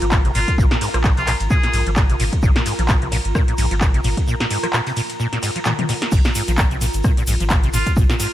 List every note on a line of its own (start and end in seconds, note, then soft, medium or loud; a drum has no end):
0.00 0.31 G#1 loud
0.00 0.05 F3 medium
0.00 8.33 F4 medium
0.00 8.33 A#4 medium
0.00 8.33 A#5 medium
0.00 closed hi-hat medium
0.11 0.19 A#2 loud
0.11 kick loud
0.11 snare loud
0.11 clap loud
0.11 shaker medium
0.25 0.30 C3 medium
0.25 snare soft
0.25 closed hi-hat soft
0.35 0.45 G#1 medium
0.35 0.39 A#2 loud
0.35 0.53 F4 medium
0.35 open hi-hat loud
0.35 ride medium
0.35 shaker medium
0.48 kick medium
0.48 snare soft
0.48 closed hi-hat medium
0.58 0.68 A#1 loud
0.58 0.65 A#2 loud
0.58 kick loud
0.58 shaker medium
0.71 0.77 A#2 medium
0.71 snare medium
0.71 closed hi-hat soft
0.81 0.88 G#2 medium
0.81 snare medium
0.81 open hi-hat loud
0.81 ride medium
0.81 shaker medium
0.94 1.35 A#1 medium
0.94 0.98 F3 medium
0.94 cross-stick medium
0.94 closed hi-hat medium
1.04 1.11 A#2 loud
1.04 kick loud
1.04 snare loud
1.04 clap loud
1.04 shaker medium
1.17 1.23 C3 medium
1.17 1.34 F4 medium
1.17 closed hi-hat soft
1.27 1.32 A#2 loud
1.27 cross-stick medium
1.27 clap medium
1.27 open hi-hat medium
1.27 ride medium
1.27 shaker medium
1.40 1.48 G#1 medium
1.40 closed hi-hat soft
1.40 closed hi-hat medium
1.50 1.58 A#2 loud
1.50 1.86 G#4 medium
1.50 kick loud
1.50 shaker loud
1.63 1.69 A#2 medium
1.63 snare soft
1.63 closed hi-hat medium
1.73 1.83 A#1 loud
1.73 1.81 G#2 medium
1.73 open hi-hat loud
1.73 ride medium
1.73 shaker medium
1.86 2.15 G#1 loud
1.86 1.90 F3 medium
1.86 closed hi-hat medium
1.96 2.04 A#2 loud
1.96 kick loud
1.96 snare loud
1.96 clap loud
1.96 shaker medium
2.10 2.15 C3 medium
2.10 snare soft
2.10 closed hi-hat medium
2.20 2.29 G#1 medium
2.20 2.24 A#2 loud
2.20 open hi-hat medium
2.20 ride medium
2.20 shaker medium
2.33 kick medium
2.33 closed hi-hat medium
2.42 2.52 A#1 loud
2.42 2.50 A#2 loud
2.42 kick loud
2.42 shaker medium
2.56 2.61 A#2 medium
2.56 snare medium
2.56 closed hi-hat soft
2.66 2.73 G#2 medium
2.66 open hi-hat loud
2.66 ride medium
2.66 shaker medium
2.78 3.20 A#1 medium
2.78 2.82 F3 medium
2.78 snare soft
2.78 closed hi-hat medium
2.89 2.96 A#2 loud
2.89 kick loud
2.89 snare loud
2.89 clap loud
2.89 shaker loud
3.02 3.07 C3 medium
3.02 closed hi-hat soft
3.12 3.16 A#2 loud
3.12 snare loud
3.12 open hi-hat medium
3.12 ride medium
3.12 shaker medium
3.25 3.32 G#1 medium
3.25 closed hi-hat medium
3.35 3.42 A#2 loud
3.35 kick loud
3.35 cross-stick medium
3.35 shaker medium
3.48 3.54 A#2 medium
3.48 closed hi-hat medium
3.58 3.68 A#1 loud
3.58 3.65 G#2 medium
3.58 open hi-hat loud
3.58 ride medium
3.58 shaker medium
3.71 4.00 G#1 loud
3.71 3.74 F3 medium
3.71 snare soft
3.71 closed hi-hat medium
3.81 3.88 A#2 loud
3.81 kick loud
3.81 snare loud
3.81 clap loud
3.81 shaker loud
3.94 4.00 C3 medium
3.94 snare soft
3.94 closed hi-hat medium
4.04 4.14 G#1 medium
4.04 4.09 A#2 loud
4.04 open hi-hat medium
4.04 ride medium
4.04 shaker medium
4.17 kick medium
4.17 snare soft
4.17 closed hi-hat medium
4.27 4.35 A#2 loud
4.27 shaker medium
4.40 4.46 A#2 medium
4.40 snare medium
4.40 closed hi-hat soft
4.50 4.58 G#2 medium
4.50 snare medium
4.50 open hi-hat loud
4.50 ride medium
4.50 shaker medium
4.63 4.67 F3 medium
4.63 cross-stick medium
4.63 closed hi-hat medium
4.73 4.81 A#2 loud
4.73 snare loud
4.73 clap loud
4.73 shaker medium
4.87 4.92 C3 medium
4.87 closed hi-hat soft
4.97 5.01 A#2 medium
4.97 open hi-hat medium
4.97 ride medium
4.97 shaker medium
5.10 closed hi-hat soft
5.10 closed hi-hat medium
5.20 5.27 A#2 loud
5.20 shaker medium
5.33 5.38 A#2 medium
5.33 snare soft
5.33 closed hi-hat medium
5.43 5.50 G#2 medium
5.43 snare loud
5.43 open hi-hat loud
5.43 ride medium
5.43 shaker medium
5.56 5.59 F3 medium
5.56 closed hi-hat medium
5.65 5.73 A#2 loud
5.65 clap loud
5.65 high tom medium
5.65 shaker medium
5.79 5.84 C3 medium
5.79 closed hi-hat medium
5.79 high tom medium
5.89 5.93 A#2 loud
5.89 snare loud
5.89 open hi-hat medium
5.89 ride medium
5.89 shaker medium
6.02 snare medium
6.02 closed hi-hat medium
6.12 6.22 A#1 loud
6.12 6.19 A#2 loud
6.12 kick loud
6.12 crash medium
6.12 shaker medium
6.25 6.31 A#2 medium
6.25 snare medium
6.25 closed hi-hat soft
6.25 shaker soft
6.35 6.42 G#2 medium
6.35 open hi-hat loud
6.35 ride medium
6.35 shaker medium
6.48 6.89 A#1 loud
6.48 6.51 F3 medium
6.48 snare soft
6.48 closed hi-hat medium
6.48 shaker soft
6.58 6.65 A#2 loud
6.58 kick loud
6.58 snare loud
6.58 clap loud
6.58 shaker soft
6.58 shaker medium
6.71 6.77 C3 medium
6.71 closed hi-hat soft
6.71 shaker soft
6.81 6.85 A#2 loud
6.81 open hi-hat loud
6.81 ride medium
6.81 shaker medium
6.93 7.02 G#1 medium
6.93 closed hi-hat medium
6.93 shaker soft
7.04 7.11 A#2 loud
7.04 kick loud
7.04 cross-stick medium
7.04 shaker medium
7.04 shaker soft
7.17 7.23 A#2 medium
7.17 snare soft
7.17 closed hi-hat medium
7.17 shaker soft
7.27 7.37 A#1 loud
7.27 7.34 G#2 medium
7.27 open hi-hat loud
7.27 ride medium
7.27 shaker loud
7.27 shaker medium
7.40 7.69 G#1 loud
7.40 7.44 F3 medium
7.40 closed hi-hat medium
7.40 shaker soft
7.50 7.58 A#2 loud
7.50 kick loud
7.50 snare loud
7.50 clap loud
7.50 shaker medium
7.63 7.69 C3 medium
7.63 snare soft
7.63 closed hi-hat medium
7.63 shaker soft
7.73 7.83 G#1 medium
7.73 7.78 A#2 medium
7.73 7.92 F4 loud
7.73 open hi-hat loud
7.73 ride medium
7.73 shaker medium
7.86 kick medium
7.86 snare soft
7.86 closed hi-hat medium
7.86 shaker soft
7.96 8.06 A#1 medium
7.96 8.04 A#2 loud
7.96 kick loud
7.96 shaker loud
7.96 shaker medium
8.10 8.15 A#2 medium
8.10 snare medium
8.10 closed hi-hat soft
8.10 shaker soft
8.19 8.27 G#2 medium
8.19 snare medium
8.19 open hi-hat loud
8.19 ride medium
8.19 shaker medium
8.19 shaker loud